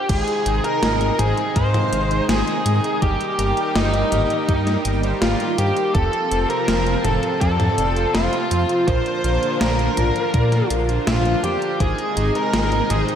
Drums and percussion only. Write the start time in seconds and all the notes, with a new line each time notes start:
0.09 kick, closed hi-hat, crash
0.28 closed hi-hat
0.46 closed hi-hat
0.64 closed hi-hat
0.83 snare, closed hi-hat
1.01 closed hi-hat
1.19 closed hi-hat, mid tom
1.37 closed hi-hat
1.56 kick, closed hi-hat
1.74 closed hi-hat, mid tom
1.93 closed hi-hat
2.11 closed hi-hat
2.29 snare, closed hi-hat
2.48 closed hi-hat
2.66 closed hi-hat
2.84 closed hi-hat
3.02 kick, closed hi-hat
3.21 closed hi-hat
3.39 closed hi-hat
3.57 closed hi-hat
3.76 snare, closed hi-hat
3.94 closed hi-hat
4.12 closed hi-hat, mid tom
4.30 closed hi-hat
4.49 kick, closed hi-hat
4.67 snare, closed hi-hat
4.85 closed hi-hat
5.03 closed hi-hat
5.22 snare, closed hi-hat, mid tom
5.40 closed hi-hat
5.58 closed hi-hat
5.77 closed hi-hat
5.95 kick, closed hi-hat
6.13 closed hi-hat
6.31 closed hi-hat
6.50 closed hi-hat
6.68 snare, closed hi-hat
6.87 closed hi-hat
7.05 closed hi-hat, mid tom
7.23 closed hi-hat
7.41 kick, closed hi-hat
7.60 closed hi-hat, mid tom
7.78 closed hi-hat
7.96 closed hi-hat
8.15 snare, closed hi-hat
8.33 closed hi-hat
8.51 closed hi-hat
8.69 closed hi-hat
8.88 kick, closed hi-hat
9.06 closed hi-hat
9.24 closed hi-hat
9.43 closed hi-hat
9.61 snare, closed hi-hat
9.79 closed hi-hat
9.97 closed hi-hat, mid tom
10.16 closed hi-hat
10.34 kick, closed hi-hat
10.52 snare, closed hi-hat
10.70 closed hi-hat
10.89 closed hi-hat
11.07 snare, closed hi-hat, mid tom
11.25 closed hi-hat
11.44 closed hi-hat
11.62 closed hi-hat
11.80 kick, closed hi-hat
11.98 closed hi-hat
12.17 closed hi-hat
12.35 closed hi-hat
12.54 snare, closed hi-hat
12.72 closed hi-hat
12.90 closed hi-hat, mid tom
13.09 closed hi-hat